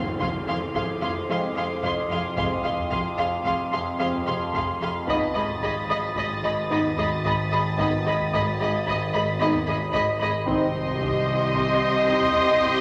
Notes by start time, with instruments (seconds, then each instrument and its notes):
Already playing: timpani F2, synth drone F2, violin section C6, impact
0.19 double bass section F1, cello section F2, viola section G#4, violin section F5 C6 D6, taiko
0.47 double bass section F1, cello section F2, viola section G#4, violin section F5 C6
0.74 double bass section F1, cello section F2, viola section G#4, violin section F5 C6 D#6, taiko
1.02 double bass section F1, cello section F2, viola section G#4, violin section F5 C6
1.29 double bass section F1, cello section F2, french horn section G#3 C4, viola section G#4, violin section F5 C6
1.56 double bass section F1, cello section F2, viola section G#4, violin section F5 C6
1.83 double bass section F1, cello section F2, viola section G#4, violin section F5 C6, taiko
2.10 double bass section F1, cello section F2, viola section G#4, violin section F5 C6
2.37 double bass section F1, cello section F2, french horn section G#3 C4, viola section G#4, violin section F5 C6, taiko
2.63 double bass section F1, cello section F2, viola section G#4, violin section F5 C6
2.78 taiko low
2.91 double bass section F1, cello section F2, viola section G#4, violin section F5 C6, taiko
3.17 double bass section F1, cello section F2, viola section G#4, violin section F5 C6
3.44 double bass section F1, cello section F2, viola section G#4, violin section F5 C6, taiko
3.72 double bass section F1, cello section F2, viola section G#4, violin section F5 C6
3.99 double bass section F1, cello section F2, french horn section G#3 C4, viola section G#4, violin section F5 C6
4.13 taiko low
4.27 double bass section F1, cello section F2, viola section G#4, violin section F5 C6, taiko low
4.53 double bass section F1, cello section F2, viola section G#4, violin section F5 C6, taiko
4.81 double bass section F1, cello section F2, viola section G#4, violin section F5 C6
5.07 synth drone G#1, double bass section G#1, cello section G#2, french horn section B3 D#4, viola section G#4, violin section D#5 B5 D#6 A6, taiko
5.34 double bass section G#1, cello section G#2, viola section G#4, violin section D#5 B5
5.48 taiko low
5.61 double bass section G#1, cello section G#2, viola section G#4, violin section D#5 B5, taiko
5.89 double bass section G#1, cello section G#2, viola section G#4, violin section D#5 B5
6.15 double bass section G#1, cello section G#2, viola section G#4, violin section D#5 B5, taiko
6.43 double bass section G#1, cello section G#2, viola section G#4, violin section D#5 B5
6.70 double bass section G#1, cello section G#2, french horn section B3 D#4, viola section G#4, violin section D#5 B5
6.84 taiko low
6.97 double bass section G#1, cello section G#2, viola section G#4, violin section D#5 B5, taiko low
7.24 double bass section G#1, cello section G#2, viola section G#4, violin section D#5 B5, taiko
7.51 double bass section G#1, cello section G#2, viola section G#4, violin section D#5 B5
7.78 double bass section G#1, cello section G#2, french horn section B3 D#4, viola section G#4, violin section D#5 B5, taiko
8.05 double bass section G#1, cello section G#2, viola section G#4, violin section D#5 B5
8.20 taiko low
8.33 double bass section G#1, cello section G#2, viola section G#4, violin section D#5 B5, taiko
8.60 double bass section G#1, cello section G#2, viola section G#4, violin section D#5 B5
8.86 double bass section G#1, cello section G#2, viola section G#4, violin section D#5 B5, taiko
9.13 double bass section G#1, cello section G#2, viola section G#4, violin section D#5 B5
9.40 double bass section G#1, cello section G#2, french horn section B3 D#4, viola section G#4, violin section D#5 B5
9.54 taiko low
9.66 double bass section G#1, cello section G#2, viola section G#4, violin section D#5 B5, taiko low
9.93 double bass section G#1, cello section G#2, viola section G#4, violin section D#5 B5, taiko
10.19 double bass section G#1, cello section G#2, viola section G#4, violin section D#5 B5
10.46 synth drone C2, double bass section C2, cello section C3, french horn section C4 D#4, viola section G4, violin section D#5 C6, taiko
10.50 violin section D#6
10.88 taiko low
11.01 violin section G6, taiko
11.54 taiko
12.06 french horn section C4 D#4
12.21 taiko low
12.34 taiko low
12.61 taiko